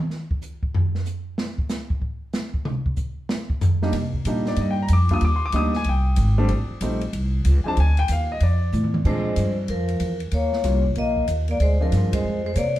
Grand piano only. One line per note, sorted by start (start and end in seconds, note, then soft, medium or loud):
3.82 3.93 G3 medium
3.82 3.93 A#3 medium
3.82 3.93 D4 medium
3.82 3.93 D#4 medium
4.27 4.75 G3 medium
4.27 4.75 A#3 medium
4.27 4.75 D4 medium
4.27 4.75 D#4 medium
4.48 4.58 D5 medium
4.61 4.70 D#5 medium
4.71 4.80 G5 medium
4.82 4.91 A#5 medium
4.93 5.11 D6 medium
5.11 5.21 G3 medium
5.11 5.21 A#3 medium
5.11 5.21 D4 medium
5.11 5.21 F4 medium
5.11 5.23 D#6 medium
5.25 5.33 D6 medium
5.36 5.44 C6 medium
5.46 5.55 D6 medium
5.54 5.72 G3 medium
5.54 5.72 A#3 medium
5.54 5.72 D4 medium
5.54 5.72 D#4 medium
5.54 5.75 D#6 medium
5.76 5.86 G#5 medium
5.89 6.47 G5 medium
6.38 6.48 G3 medium
6.38 6.48 A3 medium
6.38 6.48 C4 medium
6.38 6.48 D4 medium
6.82 7.00 G3 medium
6.82 7.00 A3 medium
6.82 7.00 C4 medium
6.82 7.00 D#4 medium
7.65 7.76 F3 medium
7.65 7.76 G#3 medium
7.65 7.76 C4 medium
7.65 7.76 D4 medium
7.65 7.78 A5 medium
7.80 7.98 G#5 medium
7.99 8.09 G5 loud
8.12 8.30 F5 medium
8.32 8.42 D#5 medium
8.43 8.96 D5 medium
9.05 9.53 F3 medium
9.05 9.53 G#3 medium
9.05 9.54 C4 medium
9.05 9.54 D4 medium
10.64 10.83 G3 medium
10.64 10.83 A#3 soft
10.64 10.83 C#4 medium
10.64 10.83 F4 medium
11.80 12.22 G#3 medium
11.80 12.22 C4 medium
11.80 12.22 D4 soft
11.80 12.22 F4 medium